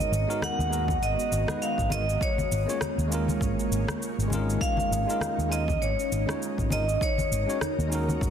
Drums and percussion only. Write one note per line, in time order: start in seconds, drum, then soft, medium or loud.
0.00 cabasa soft
0.13 cabasa medium
0.30 cabasa soft
0.42 cross-stick medium
0.42 high conga medium
0.42 cabasa soft
0.60 cabasa soft
0.73 cabasa medium
0.88 kick medium
0.88 high conga medium
0.88 cabasa soft
1.03 cabasa soft
1.19 cabasa soft
1.32 cabasa medium
1.48 cross-stick medium
1.48 high conga medium
1.48 cabasa soft
1.62 cabasa soft
1.78 kick medium
1.78 cabasa soft
1.90 high conga medium
1.90 cabasa medium
2.09 cabasa soft
2.21 kick loud
2.21 cabasa soft
2.38 high conga medium
2.38 cabasa soft
2.52 cabasa medium
2.69 cabasa soft
2.81 cross-stick medium
2.81 high conga medium
2.81 cabasa soft
2.99 cabasa soft
3.12 cabasa medium
3.28 high conga medium
3.28 cabasa soft
3.41 kick loud
3.41 cabasa soft
3.59 cabasa soft
3.72 cabasa medium
3.88 cross-stick medium
3.88 high conga medium
3.88 cabasa soft
4.02 cabasa soft
4.20 cabasa soft
4.30 high conga medium
4.30 cabasa medium
4.50 cabasa soft
4.61 kick loud
4.61 cabasa soft
4.77 high conga medium
4.77 cabasa soft
4.93 cabasa medium
5.10 cabasa soft
5.21 cross-stick medium
5.21 high conga medium
5.21 cabasa soft
5.40 cabasa soft
5.52 cabasa medium
5.68 kick loud
5.68 high conga medium
5.68 cabasa soft
5.82 cabasa soft
5.99 cabasa soft
6.12 cabasa medium
6.28 cross-stick medium
6.28 high conga medium
6.28 cabasa soft
6.42 cabasa soft
6.58 kick medium
6.58 cabasa soft
6.70 high conga loud
6.70 cabasa medium
6.89 cabasa soft
7.01 kick loud
7.01 cabasa soft
7.18 high conga medium
7.18 cabasa soft
7.32 cabasa medium
7.50 cabasa soft
7.61 cross-stick medium
7.61 high conga medium
7.61 cabasa soft
7.80 cabasa soft
7.92 cabasa medium
8.09 high conga medium
8.09 cabasa soft
8.21 kick loud
8.21 cabasa soft